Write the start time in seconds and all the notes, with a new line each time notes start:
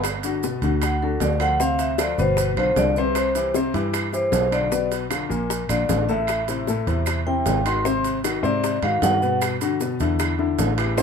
Already playing: G1
0.04 high bongo, high timbale, claves, maracas
0.23 D3 D4 F#4, high bongo, high timbale, maracas
0.43 B2 B3 B4, high bongo, low timbale, maracas
0.62 D2 D3 D4 F#4, high bongo, high timbale, maracas
0.82 F#5, high bongo, high timbale, claves, maracas
1.02 D3 D4 F#4 A4, high bongo
1.20 D2 D5, high bongo, low bongo, high timbale, low timbale, maracas
1.40 F3 F4 A4 F#5, high timbale, claves, maracas
1.60 C3 C4 C5 F5, high bongo, maracas
1.79 E5, high bongo, high timbale, maracas
1.98 F3 F4 A4 D5, high bongo, high timbale, low timbale, claves, maracas
2.18 G1 B2 B3 B4 C5, high bongo, maracas
2.37 B4, high bongo, high timbale, maracas
2.57 B1 D3 D4 F4 C5, high bongo, high timbale, claves
2.76 C2 D3 D4 F4 D5, high bongo, low bongo, high timbale, low timbale, maracas
2.96 C3 C4 B4 C5, maracas
3.15 C5, high bongo, high timbale, claves, maracas
3.35 E3 E4 G4, high bongo, high timbale, maracas
3.54 C3 C4 C5, high bongo, low timbale, maracas
3.74 G2 E3 E4 G4, high bongo, high timbale, maracas
3.94 high bongo, high timbale, claves, maracas
4.12 E3 E4 G4 C5, high bongo, maracas
4.32 B1, high bongo, low bongo, high timbale, low timbale, maracas
4.52 D3 D4 F4 D5, high timbale, claves, maracas
4.71 B2 B3 B4, high bongo, maracas
4.92 high bongo, high timbale, maracas
5.10 D3 D4 F4, high bongo, high timbale, low timbale, claves, maracas
5.29 A#1 A#2 A#3 A#4, high bongo, maracas
5.50 high bongo, high timbale, maracas
5.69 A#1 D3 D4 F4 D5, high bongo, high timbale, claves, maracas
5.89 A1 D3 D4 F4, high bongo, low bongo, high timbale, low timbale, maracas
6.09 A2 A3 A4 E5, maracas
6.27 high bongo, high timbale, claves, maracas
6.48 C3 C4 E4, high bongo, high timbale, maracas
6.67 A2 A3 A4, high bongo, low timbale, maracas
6.87 E2 C3 C4 E4, high bongo, high timbale, maracas
7.06 high bongo, high timbale, claves, maracas
7.27 C3 C4 E4 G5, high bongo
7.46 G#1, high bongo, low bongo, high timbale, low timbale, maracas
7.65 D#3 D#4 F#4 C6, high timbale, claves, maracas
7.85 C3 C4 C5, high bongo, maracas
8.04 high bongo, high timbale, maracas
8.24 D#3 D#4 F#4, high bongo, high timbale, low timbale, claves, maracas
8.43 G#2 C3 C4 C5 D5, high bongo, maracas
8.64 high bongo, high timbale, maracas
8.82 G#2 D#3 D#4 F#4 F5, high bongo, high timbale, claves
9.01 G2 D#3 D#4 F#4 F#5, high bongo, low bongo, high timbale, low timbale, maracas
9.22 B2 B3 B4, maracas
9.42 high bongo, high timbale, claves, maracas
9.61 D3 D4 F#4, high bongo, high timbale, maracas
9.80 B2 B3 B4, high bongo, low timbale, maracas
10.00 E2 D3 D4 E4, high bongo, high timbale, maracas
10.19 high bongo, high timbale, claves, maracas
10.39 D3 D4 E4, high bongo
10.59 A1, high bongo, low bongo, high timbale, low timbale, maracas
10.77 E3 E4 G4, high timbale, claves, maracas
10.97 C3 C4 C5, high bongo, high timbale, maracas